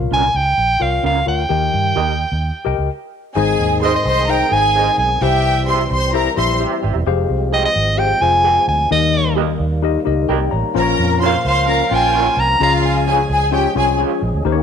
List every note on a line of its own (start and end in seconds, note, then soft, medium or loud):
0.00 0.31 A#2 medium
0.00 0.25 F4 medium
0.00 0.26 A#4 medium
0.00 0.26 C#5 medium
0.00 0.26 F5 medium
0.11 0.29 C2 medium
0.11 0.21 C#4 medium
0.11 0.22 F4 medium
0.11 0.22 A#4 medium
0.11 0.37 G#5 loud
0.34 0.53 C#2 medium
0.34 0.83 G5 loud
0.58 0.76 A#1 medium
0.80 0.99 C2 medium
0.80 1.11 F4 medium
0.80 1.11 A#4 medium
0.80 1.11 C#5 medium
0.80 1.05 F5 medium
0.80 1.12 F5 medium
1.03 1.22 C#2 medium
1.03 1.14 C#4 medium
1.03 1.14 F4 medium
1.03 1.15 A#4 medium
1.03 1.27 F5 medium
1.26 1.45 D2 medium
1.26 1.42 F4 medium
1.26 1.42 A#4 medium
1.26 1.43 C#5 medium
1.26 1.43 F5 medium
1.26 2.86 G5 medium
1.49 1.68 D#2 medium
1.49 2.16 D#3 medium
1.49 2.11 G4 medium
1.49 2.11 A#4 medium
1.49 2.11 D#5 medium
1.49 2.12 G5 medium
1.74 1.92 G2 medium
1.96 2.24 D#2 medium
1.96 2.06 G4 medium
1.96 2.07 A#4 medium
1.96 2.07 D#5 medium
2.32 2.50 D#2 medium
2.65 2.75 C2 medium
2.65 2.89 G4 medium
2.65 2.89 A#4 medium
2.65 2.89 D#5 medium
2.65 2.90 G5 medium
2.78 2.87 C#2 medium
3.35 3.54 G#1 loud
3.35 4.02 G#2 medium
3.35 5.19 D#3 medium
3.35 5.19 G#3 medium
3.35 8.87 C4 medium
3.35 3.97 D#4 medium
3.35 5.19 G#4 medium
3.35 3.80 G#4 loud
3.35 3.97 G#4 medium
3.35 3.97 C5 medium
3.35 3.97 D#5 medium
3.35 3.79 G#5 loud
3.59 3.95 D#2 medium
3.82 3.92 G#4 medium
3.82 3.92 C5 medium
3.82 4.01 C5 medium
3.82 3.93 D#5 medium
3.82 3.94 D#5 medium
3.82 4.01 C6 medium
3.96 4.31 D#5 medium
4.05 4.41 C2 medium
4.05 4.24 C5 loud
4.05 4.24 C6 loud
4.28 4.44 D#4 medium
4.28 4.44 G#4 medium
4.28 4.47 A#4 medium
4.28 4.44 C5 medium
4.28 4.45 D#5 medium
4.28 4.54 G5 loud
4.28 4.47 A#5 medium
4.51 4.88 G#1 medium
4.51 4.97 D#4 medium
4.51 4.96 G#4 loud
4.51 4.98 G#4 medium
4.51 4.98 C5 medium
4.51 4.98 F5 medium
4.51 4.96 G#5 loud
4.51 4.97 G#5 loud
4.75 4.85 G#4 medium
4.75 4.85 C5 medium
4.75 4.86 D#5 loud
4.98 5.16 B1 medium
4.98 5.24 G#5 medium
5.21 5.87 C2 loud
5.21 5.87 C3 medium
5.21 7.05 E3 medium
5.21 7.05 G3 medium
5.21 5.82 E4 medium
5.21 5.65 G4 loud
5.21 5.82 G4 medium
5.21 5.82 C5 medium
5.21 5.68 E5 medium
5.21 5.83 E5 medium
5.21 5.65 G5 loud
5.68 5.78 G4 medium
5.68 5.87 C5 medium
5.68 5.78 C5 medium
5.68 5.78 E5 medium
5.68 5.87 C6 medium
5.91 6.27 C2 medium
5.91 6.10 C5 loud
5.91 6.09 C6 loud
6.13 6.29 E4 medium
6.13 6.29 G4 medium
6.13 6.33 A#4 medium
6.13 6.29 C5 medium
6.13 6.30 E5 medium
6.13 6.33 A#5 loud
6.36 6.64 A#1 medium
6.36 6.82 E4 medium
6.36 6.82 G4 medium
6.36 6.56 C5 medium
6.36 6.83 C5 medium
6.36 6.83 E5 medium
6.36 6.56 C6 loud
6.60 6.70 G4 medium
6.60 6.70 C5 medium
6.60 6.71 E5 medium
6.83 6.93 G#1 medium
6.83 6.91 G4 medium
6.83 6.91 C5 medium
6.83 6.91 E5 medium
6.95 7.04 E1 loud
7.06 7.24 F1 loud
7.06 8.89 F3 medium
7.06 8.89 G#3 medium
7.06 7.67 G4 medium
7.06 7.67 G#4 medium
7.06 7.67 C5 medium
7.06 7.67 F5 medium
7.29 7.65 C2 medium
7.53 7.62 G#4 medium
7.53 7.63 C5 medium
7.53 7.64 D#5 medium
7.53 7.63 G5 loud
7.65 8.00 D#5 medium
7.76 8.12 G#1 medium
7.98 8.13 G4 medium
7.98 8.14 G#4 medium
7.98 8.14 C5 medium
7.98 8.14 F5 medium
7.98 8.23 G5 loud
8.21 8.57 F1 medium
8.21 8.67 F4 medium
8.21 8.67 G#4 medium
8.21 8.67 C5 medium
8.21 8.68 F5 medium
8.21 8.68 G#5 loud
8.44 8.55 G#4 medium
8.44 8.55 C5 medium
8.44 8.55 G5 medium
8.68 8.86 D2 medium
8.68 8.90 G#5 medium
8.91 9.57 D#2 loud
8.91 10.74 D#3 medium
8.91 9.56 D#3 medium
8.91 10.74 G3 medium
8.91 12.57 A#3 medium
8.91 9.51 D#4 medium
8.91 9.52 G4 medium
8.91 9.52 A#4 medium
8.91 9.52 D#5 medium
8.91 9.35 D#5 medium
9.36 9.47 G4 medium
9.36 9.47 A#4 medium
9.36 9.47 D#5 medium
9.60 9.96 D#2 medium
9.83 9.98 D#4 medium
9.83 9.99 G4 medium
9.83 9.99 A#4 medium
9.83 9.99 D#5 loud
10.05 10.25 C#2 medium
10.05 10.51 D#4 medium
10.05 10.51 G4 medium
10.05 10.28 A#4 medium
10.05 10.30 D#5 medium
10.29 10.47 C2 loud
10.29 10.39 G4 medium
10.29 10.51 A#4 medium
10.29 10.39 A#4 medium
10.29 10.40 D#5 medium
10.29 10.51 G5 medium
10.51 10.62 A1 medium
10.51 10.81 C#5 medium
10.51 10.96 A#5 medium
10.74 10.94 A#1 loud
10.74 11.41 A#2 medium
10.74 14.42 F3 medium
10.74 11.36 C#4 medium
10.74 14.63 C#4 medium
10.74 11.36 F4 medium
10.74 11.36 A#4 medium
10.74 11.19 A#4 loud
10.74 12.59 A#4 medium
10.74 10.81 C5 medium
10.74 11.19 A#5 loud
10.82 11.39 C#5 medium
10.99 11.35 F2 medium
11.21 11.32 F4 medium
11.21 11.32 A#4 medium
11.21 11.40 C5 medium
11.21 11.33 C#5 medium
11.21 11.40 C6 medium
11.26 11.46 F5 medium
11.45 11.81 C#2 medium
11.45 11.63 C5 loud
11.45 11.96 F5 medium
11.45 11.64 C6 loud
11.68 11.83 C#4 medium
11.68 11.83 F4 medium
11.68 11.83 A#4 medium
11.68 11.87 A#4 medium
11.68 11.84 C#5 medium
11.68 11.87 A#5 loud
11.91 12.27 A#1 medium
11.91 12.36 C#4 medium
11.91 12.35 F4 loud
11.91 12.37 F4 medium
11.91 12.37 A#4 medium
11.91 12.37 C#5 medium
11.91 12.34 G5 loud
11.91 12.41 G#5 loud
12.14 12.24 F4 medium
12.14 12.24 A#4 medium
12.14 12.25 C#5 medium
12.37 12.55 C2 loud
12.37 12.62 A#5 loud
12.60 13.26 C#2 loud
12.60 13.26 C#3 medium
12.60 14.44 G#3 medium
12.60 13.21 C#4 medium
12.60 13.21 F4 medium
12.60 13.04 F4 loud
12.60 14.43 G#4 medium
12.60 13.21 G#4 medium
12.60 13.22 C#5 medium
12.60 13.04 F5 loud
12.60 12.73 A#5 loud
12.86 13.73 G#5 medium
13.07 13.17 F4 medium
13.07 13.25 G#4 medium
13.07 13.17 G#4 medium
13.07 13.17 C#5 medium
13.07 13.25 G#5 medium
13.30 13.65 C#2 medium
13.30 13.49 G#4 loud
13.30 13.49 G#5 loud
13.52 13.67 C#4 medium
13.52 13.68 F4 medium
13.52 13.72 G4 medium
13.52 13.68 G#4 medium
13.52 13.68 C#5 medium
13.52 13.72 G5 loud
13.75 14.03 C2 medium
13.75 14.21 C#4 medium
13.75 14.21 F4 medium
13.75 13.95 G#4 loud
13.75 14.21 G#4 medium
13.75 14.22 C#5 medium
13.75 13.95 G#5 loud
13.99 14.09 F4 medium
13.99 14.09 G#4 medium
13.99 14.09 C#5 medium
14.22 14.31 A#1 loud
14.33 14.42 D2 medium
14.45 14.63 D#2 loud
14.45 14.63 D#3 medium
14.45 14.63 A#3 medium
14.45 14.63 D#4 medium
14.45 14.63 G4 medium
14.45 14.63 A#4 medium
14.45 14.51 C5 medium
14.52 14.63 C#5 loud